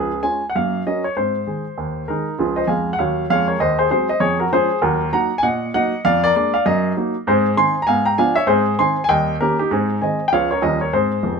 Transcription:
Already playing: C#2 F3 G#4
0.22 G#3 C#4 F4 G#5
0.50 F#5
0.56 F#2 A#3 F5
0.87 F#3 C#4 A#4 D#5
1.04 C#5
1.17 G#2 C4 C5
1.47 D#3 G#3 G#4
1.78 D#2
2.08 D#3 G#3 D#4 G#4 A#4
2.39 C#2 F3 F4 G#4
2.56 C5 D#5
2.67 F2 G#3 F5 G#5
2.93 F#5
2.99 D#2 F#3 C#5 F5
3.30 F2 G#3 C#5 F5
3.48 A#4 C#5
3.60 D#2 C5 D#5
3.79 G#4 C5
3.91 F#3 G#3 C4 G#4 C5
4.09 C5 D#5
4.20 F2 G#4 C#5
4.39 F#4 A#4
4.53 F3 G#3 C#4 G#4 C5
4.82 D#2 F#3 F#4 A#4
5.12 F#3 A#3 D#4 F#5 A#5
5.38 G#5
5.43 A#2 D#5 F#5
5.74 F#3 A#3 D#4 D#5 F#5
6.05 F2 D5 F5
6.24 A#4 D5
6.36 G#3 A#3 D4 A#4 D5
6.54 D5 F5
6.66 F#2 A#4 D#5
6.97 F#3 A#3 D#4
7.27 G#2 C4 G#4 C5
7.57 D#3 C4 D#4 G#5 C6
7.82 A#5
7.87 G#2 B3 F5 G#5
8.05 G5 A#5
8.18 F3 B3 D4 F5 G#5
8.36 C#5 E5
8.47 G#2 C4 G#4 C5
8.79 D#3 C4 D#4 G#5 C6
9.04 G#5
9.09 D#2 G3 D#5 G5
9.40 D#3 A#3 C#4 G4 A#4
9.59 D#4 G4
9.71 G#2 C4 D#4 G#4
10.02 D#3 G#3 C4 D#5 G#5
10.28 G5
10.33 C#2 F3 G#3 C#4 C#5 F5
10.51 A#4 C#5
10.62 D#2 F3 G3 C#4 A#4 D#5
10.81 A#4 C#5
10.93 G#2 C4 G#4 C5
11.23 F1 F2

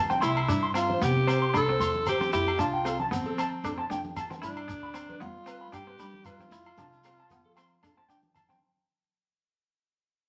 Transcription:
Already playing: C#2
0.10 C4 G5, high conga, shekere
0.21 C2 E4 C6, shekere
0.37 low agogo
0.48 G2 D4, shekere
0.63 C6
0.74 C4 F4, low agogo, shekere
0.89 C5, high conga
1.01 C3 B3 G4, low conga, shekere
1.27 C4 C5, low agogo, shekere
1.42 C6
1.54 C2 D4 A4 B5, low agogo, shekere
1.68 C4 C5
1.80 E2 C6, shekere
1.95 high conga
2.06 G4 C5, low conga, low agogo, shekere
2.21 C4, high conga, shekere
2.33 F2 E4 G4, shekere
2.48 low agogo
2.59 C2 D4 F4 A5, shekere
2.73 G5
2.85 C4 F4 A4, low agogo, shekere
3.00 A5, high conga
3.11 F3 B3 C4, low conga, shekere
3.26 A4
3.38 C4 A5, low agogo, shekere
3.64 F2 D4 A4, low agogo, shekere
3.78 C4 A5
3.90 F2 D4 G5, shekere
4.05 high conga
4.16 A5, low conga, low agogo, shekere
4.30 C4, muted clean electric guitar stroke, high conga, shekere
4.42 G2 D4 E4 B5, shekere
4.57 low agogo
4.68 D2 D4, shekere
4.83 B5
4.94 C4, low agogo, shekere
5.09 B4, high conga
5.20 G3 B3 F4, low conga
5.46 C4 B4, low agogo, shekere
5.61 B5
5.72 G2 D4 G4 G5, low agogo, shekere
5.87 C4 B4
5.99 G3 D4 B5, shekere
6.14 high conga
6.25 F4 B4, low conga, low agogo, shekere
6.39 C4, high conga, shekere
6.51 F2 E4, shekere
6.66 low agogo
6.77 C2 D4 A5, high conga, low conga, shekere
6.92 shekere
7.04 C4, muted clean electric guitar stroke, low agogo, shekere
7.19 A5
7.30 F3 B3, low conga, shekere
7.46 A4
7.57 C4 C6, low agogo, shekere
7.83 F2 D4 A4, low agogo, shekere
7.97 C4 A5
8.08 F3 D4 G5, shekere
8.23 high conga
8.34 A5, low conga, low agogo, shekere
8.49 C4 G5, high conga, shekere

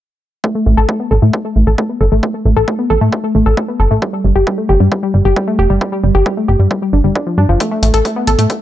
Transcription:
0.44 A3, kick
0.55 A3
0.66 A1 A3
0.77 A1 A4
0.89 A3, kick
1.00 B3
1.11 A1 A4
1.22 A2 A3
1.33 A3, kick
1.45 A3
1.56 A1 A3
1.67 A1 A4
1.78 A3, kick
1.89 B3
2.01 G1 A4
2.12 A1 A3
2.23 A3, kick
2.34 A3
2.45 A1 A3
2.56 A1 A4
2.68 A3, kick
2.79 B3
2.90 A1 A4
3.01 A2 A3
3.12 A3, kick
3.24 A3
3.35 A1 A3
3.46 A1 A4
3.57 A3, kick
3.68 B3
3.80 G1 A4
3.91 A1 A3
4.02 G3, kick
4.13 G3
4.24 G1 G3
4.36 G1 G4
4.47 G3, kick
4.58 A3
4.69 G1 G4
4.80 G2 G3
4.92 G3, kick
5.03 G3
5.14 G1 G3
5.25 G1 G4
5.36 G3, kick
5.47 A3
5.59 F1 G4
5.70 G1 G3
5.81 G3, kick
5.92 G3
6.04 G1 G3
6.15 G1 G4
6.26 G3, kick
6.37 A3
6.48 G1 G4
6.59 G2 G3
6.71 G3, kick
6.82 G3
6.93 G1 D4
7.04 G1 G3
7.15 D4, kick
7.27 F3
7.38 G2 D4
7.49 G1 F3
7.60 A3, kick, closed hi-hat
7.71 A3
7.83 A1 A3, closed hi-hat
7.94 A1 A4, closed hi-hat
8.05 A3, kick, closed hi-hat
8.16 B3
8.27 A1 A4, closed hi-hat
8.39 A2 A3, closed hi-hat
8.50 A3, kick, closed hi-hat

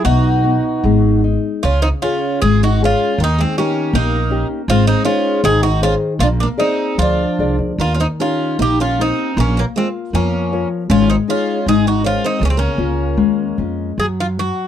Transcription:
0.04 B1 B3 D#4 F#4
0.44 B3
0.84 G#1 G#3
1.24 D#4
1.63 C#2 C#3 C#4 F4
1.82 C4 D#4
2.02 C#4 F4 G#4
2.42 G#1 G#3 F4 G#4
2.63 D#4 F#4
2.81 C#4 F4 G#4
3.18 D#2 D#3 A#3
3.24 D#4
3.38 G#3 C4
3.57 A#3 C#4 D#4 G4
3.93 A#1 A#3 D#4
4.30 C#4 D#4 G4
4.68 G#1 G#3 C4 F4
4.87 C4 D#4
5.05 C#4 D#4 F4 G#4 C5
5.44 G#1 D#3 D#4 G#4
5.63 D#4 F#4
5.82 C#4 D#4 F4 G#4 C5
6.19 A#1 A#3 D4 F4
6.40 A#3 D4
6.58 C4 D#4 G#4 A#4 D5
6.98 D2 F3 D4 F4
7.39 C2 G#4 A#4 D5
7.58 D2
7.78 D#2 D#3 A#3 F4
7.94 C#4 F4
8.00 C4 D#4
8.20 C#4 D#4 F4 G4 A#4
8.59 A#1 A#3 D#4 G4
8.80 C#4 F4
8.99 C4 D#4 G4 A#4
9.37 A#1 A#3 C#4
9.57 F#3 A#3
9.76 G#3 C4 F4 A#4 F5
10.13 F2 F3 A#3 C#4
10.52 F4 A#4 C#5
10.90 G#1 G#3 C#4 F4
11.10 C4 D#4
11.28 C#4 D#4 F4 G#4 C#5
11.66 G#1 G#3 D#4 G#4
11.87 D#4 F#4
12.03 C#4 F4 G#4 A#4 C5
12.24 C4 D#4
12.39 C#2 C#3 A#3
12.45 G#3 C#4
12.50 C4
12.57 A#3 C#4
12.78 C#2 A#3 C#4 F4
13.17 D#2 G#3
13.58 F2 A#3 C#4 F4
13.98 F#2 F#3 G#4
14.20 F4
14.39 F#3 F#4

